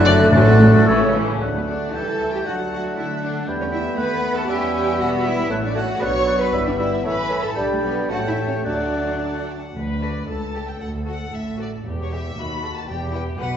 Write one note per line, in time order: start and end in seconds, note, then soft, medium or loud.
0.00 0.26 F#1 loud
0.00 0.32 A3 loud
0.00 0.32 A3 medium
0.00 0.31 D4 medium
0.00 0.32 D5 medium
0.00 0.31 F#6 loud
0.04 0.32 D3 loud
0.04 0.19 F#3 medium
0.04 0.30 D4 loud
0.04 0.20 D4 medium
0.04 0.14 D5 loud
0.20 0.33 D3 medium
0.20 0.33 A3 medium
0.20 0.34 A3 medium
0.20 0.34 F#4 medium
0.31 0.81 A1 loud
0.31 0.83 A2 loud
0.31 1.14 A2 medium
0.31 0.87 F#3 medium
0.31 0.46 F#3 medium
0.31 1.12 A3 loud
0.31 0.86 A3 medium
0.31 0.86 D4 medium
0.31 0.46 D4 medium
0.31 1.13 A4 loud
0.31 0.89 D5 medium
0.31 0.88 F#6 medium
0.47 0.60 D3 medium
0.47 0.61 A3 medium
0.47 0.61 F#4 medium
0.61 0.74 F#3 medium
0.61 0.74 D4 medium
0.75 0.88 D3 medium
0.75 0.88 A3 medium
0.75 0.88 F#4 medium
0.86 1.35 A1 medium
0.86 1.14 E3 medium
0.86 1.01 E3 medium
0.86 1.14 A3 medium
0.86 1.14 C#4 medium
0.86 1.01 C#4 medium
0.86 1.01 E4 medium
0.86 1.15 C#5 medium
0.86 1.14 E6 medium
1.01 1.15 C#3 medium
1.01 1.15 A3 medium
1.01 1.14 C#4 medium
1.15 1.29 E3 medium
1.15 1.27 C#4 medium
1.15 1.29 E4 medium
1.28 1.42 C#3 medium
1.28 1.42 A3 medium
1.28 1.41 A3 medium
1.28 1.42 C#4 medium
1.40 1.90 D2 medium
1.40 1.90 F#3 soft
1.40 1.90 A3 soft
1.40 3.50 A3 soft
1.40 1.90 D4 soft
1.40 1.94 D5 soft
1.40 1.90 F#5 soft
1.40 1.91 F#5 soft
1.40 3.43 A5 soft
1.55 1.60 B3 soft
1.55 1.67 B4 soft
1.67 1.93 D4 medium
1.67 1.94 D5 soft
1.93 2.45 C#2 soft
1.93 2.46 E3 soft
1.93 2.46 G3 soft
1.93 2.46 E4 soft
1.93 2.32 A4 medium
1.93 2.47 E5 soft
1.93 2.46 E5 soft
1.93 2.48 G5 soft
1.93 2.32 A5 medium
2.31 2.38 G4 medium
2.31 2.45 G5 soft
2.45 2.96 D2 medium
2.45 3.48 F#3 soft
2.45 2.96 F#3 soft
2.45 3.48 D4 soft
2.45 2.53 F#4 medium
2.45 3.47 D5 soft
2.45 2.71 F#5 soft
2.45 3.48 F#5 soft
2.45 3.49 F#5 soft
2.71 2.96 F#4 medium
2.71 2.80 F#5 soft
2.97 3.46 D3 soft
2.97 3.97 A3 medium
2.97 3.05 E4 medium
2.97 3.22 E5 soft
3.22 3.47 D4 medium
3.22 3.31 D5 soft
3.47 3.97 E2 medium
3.47 3.99 G3 soft
3.47 3.97 G3 soft
3.47 5.50 B3 medium
3.47 5.46 B4 medium
3.47 3.99 G5 soft
3.47 3.97 G5 soft
3.47 5.46 B5 medium
3.60 3.66 C#4 medium
3.60 3.65 C#5 soft
3.73 3.81 E4 medium
3.73 3.98 E5 medium
3.97 4.47 D#2 medium
3.97 4.48 A3 medium
3.97 4.48 B3 medium
3.97 4.35 B4 medium
3.97 4.48 F#5 soft
3.97 4.48 F#5 medium
3.97 4.35 B5 medium
4.36 4.48 A4 medium
4.36 4.49 A5 medium
4.47 4.98 E2 medium
4.47 5.50 G3 medium
4.47 5.48 G3 medium
4.47 4.98 C#4 medium
4.47 4.72 G4 medium
4.47 5.48 E5 medium
4.47 5.00 E5 medium
4.47 4.74 G5 medium
4.73 4.98 G4 medium
4.73 4.99 G5 medium
4.98 5.50 E1 medium
4.98 5.49 B3 medium
4.98 5.24 F#4 medium
4.98 5.08 F#5 medium
4.98 5.50 B5 medium
5.25 5.50 E4 medium
5.25 5.50 E5 medium
5.49 5.97 A1 medium
5.49 5.61 A3 medium
5.49 6.00 A3 medium
5.49 6.01 A3 medium
5.49 6.01 C#4 medium
5.49 5.62 A4 soft
5.49 5.61 C#5 medium
5.49 5.62 F#5 medium
5.49 5.56 A5 medium
5.63 5.75 D4 medium
5.63 5.76 C#5 soft
5.63 5.76 D5 medium
5.75 5.87 A3 soft
5.75 6.01 F#4 medium
5.75 5.89 A4 soft
5.75 5.87 C#5 medium
5.75 5.88 F#5 soft
5.75 6.02 F#5 medium
5.75 5.81 A5 medium
5.89 6.02 C#5 soft
5.99 6.53 B1 medium
5.99 6.13 F#3 medium
5.99 6.52 F#3 medium
5.99 7.05 B3 medium
5.99 6.52 D4 medium
5.99 6.14 B4 medium
5.99 6.39 C#5 medium
5.99 6.13 D5 medium
5.99 6.13 F#5 medium
5.99 6.05 B5 medium
5.99 6.39 C#6 medium
6.15 6.27 D5 soft
6.26 6.39 F#3 soft
6.26 6.40 B4 medium
6.26 6.39 D5 soft
6.26 6.38 F#5 soft
6.26 6.32 B5 soft
6.40 6.53 B4 medium
6.40 6.53 D5 soft
6.40 6.53 B5 medium
6.51 7.05 G1 medium
6.51 7.05 G3 medium
6.51 6.65 G3 medium
6.51 7.57 E4 medium
6.51 6.64 B4 medium
6.51 6.64 E5 medium
6.51 6.65 G5 soft
6.51 6.57 B5 medium
6.66 6.71 D4 medium
6.66 6.71 D5 medium
6.66 6.79 E5 soft
6.77 6.91 G3 soft
6.77 7.04 E4 medium
6.77 6.90 B4 soft
6.77 6.90 E5 soft
6.77 7.04 E5 medium
6.77 6.93 G5 medium
6.77 6.83 B5 soft
6.92 7.05 E5 soft
7.04 7.57 A1 medium
7.04 7.56 E3 medium
7.04 7.17 A3 medium
7.04 7.57 C#4 medium
7.04 7.43 B4 medium
7.04 7.16 C#5 medium
7.04 7.17 C#5 medium
7.04 7.17 E5 medium
7.04 7.10 A5 medium
7.04 7.43 B5 medium
7.18 7.31 E5 soft
7.29 7.42 A3 soft
7.29 7.42 C#5 soft
7.29 7.44 C#5 medium
7.29 7.43 E5 medium
7.29 7.35 A5 soft
7.43 7.57 A4 medium
7.43 7.57 E5 soft
7.43 7.57 A5 medium
7.55 8.09 B1 medium
7.55 8.11 G3 medium
7.55 8.09 G3 medium
7.55 8.06 D4 medium
7.55 8.06 G4 medium
7.55 8.11 D5 medium
7.55 8.06 G5 medium
7.55 8.11 B5 medium
7.55 7.69 B5 soft
7.69 7.75 A3 medium
7.69 7.83 A4 medium
7.69 7.83 G5 soft
7.82 8.09 B3 medium
7.82 8.11 B4 medium
7.82 7.96 B5 soft
7.96 8.10 G5 soft
8.09 8.64 A1 medium
8.09 8.64 A3 soft
8.09 8.65 A3 medium
8.09 8.65 C#4 medium
8.09 8.17 F#4 medium
8.09 8.64 G4 medium
8.09 8.66 C#5 medium
8.09 8.28 F#5 medium
8.09 8.67 G5 soft
8.09 8.64 A5 medium
8.09 8.23 A5 soft
8.23 8.37 G5 soft
8.28 8.36 E4 medium
8.28 8.47 E5 medium
8.38 8.52 A5 soft
8.46 8.54 C#4 medium
8.46 8.65 C#5 soft
8.52 8.66 G5 soft
8.65 9.56 D2 soft
8.65 9.50 F#3 soft
8.65 9.48 A3 medium
8.65 9.47 D4 medium
8.65 9.50 D4 soft
8.65 9.50 F#4 soft
8.65 9.49 D5 medium
8.65 9.48 D5 medium
8.65 9.50 F#5 soft
8.65 9.48 A5 soft
8.65 8.79 A5 soft
8.80 8.94 F#5 soft
8.93 9.08 A5 soft
9.07 9.22 F#5 soft
9.22 9.35 A5 soft
9.35 9.49 F#5 soft
9.49 9.63 A5 soft
9.62 9.76 F#5 soft
9.75 10.19 D2 soft
9.75 10.20 D2 soft
9.75 10.25 D3 medium
9.75 10.25 B4 medium
9.89 10.02 B4 soft
10.02 10.10 F#4 soft
10.02 10.10 A4 soft
10.02 10.29 D5 medium
10.28 10.72 C#2 soft
10.28 10.73 C#2 soft
10.28 11.86 A4 soft
10.28 10.68 A5 medium
10.54 10.62 G4 soft
10.54 10.62 A4 soft
10.69 10.82 G5 medium
10.81 11.25 D2 soft
10.81 10.90 F#5 medium
11.06 11.14 F#4 soft
11.06 11.15 A4 soft
11.06 11.34 F#5 medium
11.33 11.77 A1 soft
11.33 11.77 A2 soft
11.33 11.60 E5 medium
11.58 11.67 F#4 soft
11.58 11.66 A4 soft
11.58 11.69 D5 medium
11.85 12.29 E1 medium
11.85 12.29 E2 medium
11.85 12.36 G4 soft
12.02 12.13 C#5 medium
12.12 12.20 G4 soft
12.12 12.38 E5 medium
12.37 12.80 D#2 medium
12.37 12.80 D#2 soft
12.37 12.87 F#4 soft
12.37 12.76 B5 medium
12.62 12.71 F#4 soft
12.62 12.70 A4 soft
12.77 12.89 A5 medium
12.88 13.30 E1 medium
12.88 13.30 E2 medium
12.88 13.38 G4 medium
12.88 13.12 G5 medium
13.13 13.22 E4 soft
13.13 13.22 B4 soft
13.13 13.21 G5 medium
13.38 13.57 B1 medium
13.38 13.57 B2 medium
13.38 13.57 B4 medium
13.38 13.57 F#5 medium